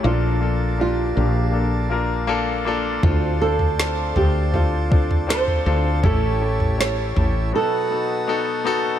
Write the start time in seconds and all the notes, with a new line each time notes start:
Already playing: A5
0.03 A#1 A#2 F3 A#3 D4 F4 A4 D5
0.41 A#3 D4 F4 A4
0.78 A#3 D4 F4 G4
1.15 A#1 A#3 D4 F4 G4
1.52 A#3 D4 F4 A4
1.90 A#3 D4 F4 A#4
2.27 A#3 D4 F4 A4
2.65 A#3 D4 F4 A4
3.03 D2 A2 C4 D4 F4 A4 C5, kick, floor tom
3.41 C4 D4 F4 A4 C5
3.59 floor tom
3.78 C4 D4 F4 A4, snare
4.15 D2 C4 D4 F4 G4 A4, floor tom
4.52 C4 D4 F4 A4, floor tom
4.90 C4 D4 F4 A4, kick
5.11 floor tom
5.27 C4 D4 F4 A4 C5, snare
5.48 floor tom
5.65 D2 C4 D4 F4 A4
6.03 A1 A2 E3 C#4 E4 G4 A4 C#5 E5, kick, floor tom
6.41 C#4 E4 G4 A4
6.60 floor tom
6.78 C#4 E4 G4 A4 C#5, snare
7.15 A1 C#4 E4 G4 A4, floor tom
7.53 B2 F#3 B3 D#4 F#4 A4 B4 D#5 A5
7.90 B3 D#4 F#4 A4
8.28 B3 D#4 F#4 A4
8.64 B3 D#4 F#4 A4